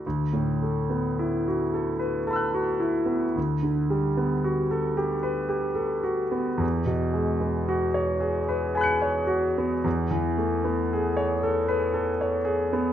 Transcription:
\new Staff \with { instrumentName = "Grand piano" } { \time 3/4 \key d \major \tempo 4 = 56 << { r2 <a'' b'' e''' fis'''>4 | r2. | r2 <gis'' b'' fis''' cis''''>4 | r2. | } \\ { d,16 a,16 a16 b16 e'16 fis'16 a'16 b'16 a'16 fis'16 e'16 b16 | d,16 d16 g16 b16 fis'16 a'16 g'16 b'16 g'16 a'16 fis'16 b16 | e,16 b,16 gis16 b16 fis'16 cis''16 gis'16 b'16 gis'16 cis''16 fis'16 b16 | e,16 e16 a16 b16 gis'16 cis''16 a'16 b'16 a'16 cis''16 gis'16 b16 | } >> }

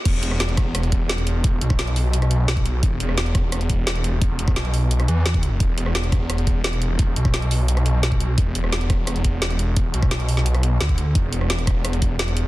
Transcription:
<<
  \new Staff \with { instrumentName = "Detuned saw bass" } { \clef bass \time 4/4 \key c \major \tempo 4 = 173 e,,8 e,,4. e,,2~ | e,,8 b,,2.~ b,,8 | e,,8 e,,4. e,,2~ | e,,8 e,,8 b,,4. e,4. |
e,,8 e,,4. e,,2~ | e,,8 b,,2.~ b,,8 | e,,8 e,,4. e,,2~ | e,,8 b,,2~ b,,8 d,4 |
e,,8 e,,4. e,,2 | }
  \new DrumStaff \with { instrumentName = "Drums" } \drummode { \time 4/4 <cymc hh bd>8 hh16 ss16 <hh sn>16 hh16 <hh bd ss>8 <hh ss>16 hh16 <hh bd>8 <hh sn>16 hh16 hh8 | <hh bd>8 hh16 <bd ss>16 <hh sn>16 hh16 hho8 hh16 <hh ss>16 hh8 <hh sn>16 <hh bd>16 hh8 | <hh bd>8 hh16 ss16 <hh sn>16 hh16 <hh bd ss>8 <hh ss>16 hh16 <hh bd>8 <hh sn>16 hh16 hh8 | <hh bd>8 hh16 <bd ss>16 <hh sn>16 hh16 hho8 hh16 <hh ss>16 hh8 <hh sn>16 <hh bd>16 hh8 |
<hh bd>8 hh16 ss16 <hh sn>16 hh16 <hh bd ss>8 <hh ss>16 hh16 <hh bd>8 <hh sn>16 hh16 hh8 | <hh bd>8 hh16 <bd ss>16 <hh sn>16 hh16 hho8 hh16 <hh ss>16 hh8 <hh sn>16 <hh bd>16 hh8 | <hh bd>8 hh16 ss16 <hh sn>16 hh16 <hh bd ss>8 <hh ss>16 hh16 <hh bd>8 <hh sn>16 hh16 hh8 | <hh bd>8 hh16 <bd ss>16 <hh sn>16 hh16 hho16 <hh sn>16 hh16 <hh ss>16 hh8 <hh sn>16 <hh bd>16 hh8 |
<hh bd>8 hh16 ss16 <hh sn>16 hh16 <hh bd ss>8 <hh ss>16 hh16 <hh bd>8 <hh sn>16 hh16 hh8 | }
>>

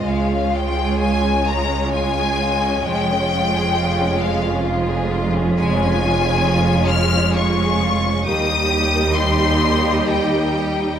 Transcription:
<<
  \new Staff \with { instrumentName = "Violin section" } { \time 3/4 \key des \lydian \tempo 4 = 66 f''8 g''8 aes''8 bes''8 aes''4 | g''4. f''8 r4 | \key ees \mixolydian aes''4. f'''8 des'''4 | ees'''4 c'''4 g''4 | }
  \new Staff \with { instrumentName = "Violin section" } { \time 3/4 \key des \lydian << { des''2.~ | des''2. | \key ees \mixolydian des''2. | ees''2. | } \\ { aes16 des'16 f'16 aes'16 f'16 des'16 aes16 des'16 f'16 aes'16 f'16 des'16 | aes16 des'16 f'16 aes'16 f'16 des'16 aes16 des'16 f'16 aes'16 f'16 des'16 | aes16 des'16 f'16 aes'16 f'16 des'16 aes16 des'16 f'16 aes'16 f'16 des'16 | bes16 ees'16 g'16 bes'16 g'16 ees'16 bes16 ees'16 g'16 bes'16 g'16 ees'16 | } >> }
  \new Staff \with { instrumentName = "Viola section" } { \time 3/4 \key des \lydian << { f'2. | f'2.~ | \key ees \mixolydian f'2. | g'2. | } \\ { aes2.~ | aes2. | aes2. | g2. | } >> }
  \new Staff \with { instrumentName = "Cello section" } { \clef bass \time 3/4 \key des \lydian des,2. | f,2.~ | \key ees \mixolydian f,2. | ees,2. | }
  \new Staff \with { instrumentName = "Double bass section" } { \clef bass \time 3/4 \key des \lydian des,2. | f,,2.~ | \key ees \mixolydian f,,2. | ees,2. | }
>>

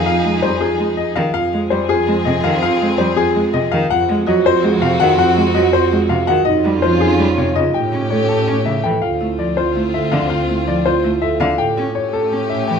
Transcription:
<<
  \new Staff \with { instrumentName = "Grand piano" } { \time 7/8 \key f \minor \tempo 4 = 164 f''8 r8 c''8 aes'8 r8 ees''8 f''8 | f''8 r8 c''8 aes'8 r8 ees''8 f''8 | f''8 r8 c''8 aes'8 r8 ees''8 f''8 | ges''8 r8 ees''8 c''8 r8 f''8 ges''8 |
ges''8 r8 ees''8 c''8 r8 f''8 ges''8 | ees''8 r8 c''8 aes'8 r8 des''8 ees''8 | g''8 r8 cis''8 a'8 r8 e''8 g''8 | \key d \minor f''8 r8 d''8 c''8 r8 e''8 f''8 |
f''8 r8 d''8 c''8 r8 e''8 f''8 | g''8 r8 cis''8 a'8 r8 e''8 g''8 | }
  \new Staff \with { instrumentName = "Marimba" } { \time 7/8 \key f \minor f'8 r8 g'8 f'8 aes'8 r8 g'8 | f'8 r8 g'8 f'8 aes'8 r8 g'8 | f'8 r8 g'8 f'8 aes'8 r8 g'8 | f'8 r8 ges'8 f'8 aes'8 r8 ges'8 |
f'8 r8 ges'8 f'8 aes'8 r8 ges'8 | ees'8 r8 f'8 ees'8 g'8 r8 f'8 | g'8 r8 a'8 r4. a'8 | \key d \minor f'8 e'8 r8 f'8 e'8 a'8 r8 |
f'8 e'8 r8 f'8 e'8 a'8 r8 | a'8 g'8 r8 a'8 g'8 cis''8 r8 | }
  \new Staff \with { instrumentName = "Violin section" } { \time 7/8 \key f \minor <ees' aes'>2. r8 | <c' aes'>2.~ <c' aes'>8~ | <c' aes'>2. r8 | <c' ges'>2.~ <c' ges'>8~ |
<c' ges'>2. r8 | <des' f'>2. r8 | <cis' g'>2. r8 | \key d \minor <c' f'>2.~ <c' f'>8~ |
<c' f'>2. r8 | <cis' g'>2.~ <cis' g'>8 | }
  \new Staff \with { instrumentName = "Cello" } { \clef bass \time 7/8 \key f \minor r8 aes8 g8 r8 aes8 r8 ees8 | r8 aes8 g8 r8 aes8 c8 ees8 | r8 aes8 g8 r8 aes8 c8 ees8 | r8 aes8 ges8 r8 aes8 c8 ees8 |
r8 aes8 ges8 r8 aes8 c8 ees8 | r8 g8 f8 r8 g8 c8 des8 | r8 cis'8 a8 r8 cis'8 cis8 e8 | \key d \minor r8 a8 f8 r8 a8 r8 d8 |
r8 a8 f8 r8 a8 r8 d8 | r8 cis'8 r4 cis'8 r8 e8 | }
  \new Staff \with { instrumentName = "Double bass section" } { \clef bass \time 7/8 \key f \minor f,2.~ f,8 | f,2.~ f,8~ | f,2.~ f,8 | f,2.~ f,8~ |
f,2.~ f,8 | f,2.~ f,8 | a,2.~ a,8 | \key d \minor d,2.~ d,8~ |
d,2.~ d,8 | a,2.~ a,8 | }
>>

